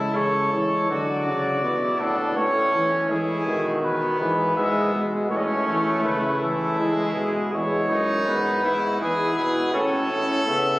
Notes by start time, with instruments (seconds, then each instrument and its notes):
Already playing: bass trombone C#3, trombone G#3, trumpet E4, cornet A4
0.15 bass trombone C#3, trumpet A4, cornet C#5
0.53 bass trombone E3, cornet C#5
0.89 bass trombone D3, trombone F#3, trumpet F#4, cornet D5
1.26 bass trombone C#3, trumpet F#4
1.63 bass trombone B2, trombone B3, trumpet E4
2.00 bass trombone A2, trumpet D4, cornet A4
2.37 bass trombone A2, trombone A3, trumpet C#4, cornet C#5
2.74 bass trombone E3
3.10 bass trombone E3, trombone G#3, trumpet E4, cornet G#4
3.47 bass trombone B2, trombone D#3
3.84 bass trombone B2, trumpet B3, cornet B4
4.20 bass trombone G#2, trombone E3, cornet B4
4.57 bass trombone G#2, trombone G#3, trumpet B3, cornet E5
4.94 bass trombone B2, trombone G#3
5.30 bass trombone A2, trombone A3, trumpet C#4, cornet C#5
5.37 cornet D#5
5.44 cornet C#5
5.67 bass trombone E3, cornet C#5
6.04 bass trombone C#3, trumpet E4, cornet B4
6.41 trombone E3, cornet A4
6.79 bass trombone E3, trombone G#3, cornet G#4
7.16 bass trombone B2
7.53 bass trombone E2, trombone G#3, trumpet E4, cornet C#5
7.91 bass trombone F#2, trumpet D#4
8.27 bass trombone G#2, trombone B3, cornet B4
8.64 bass trombone G#2, trombone B3, trumpet E4
9.00 bass trombone E2, trombone E4, trumpet G#4, cornet B4
9.37 bass trombone B2, trumpet G#4
9.74 bass trombone A2, trombone C#4, trumpet A4, cornet C#5
10.11 trombone C#4
10.47 bass trombone C#3, trombone B3, cornet E5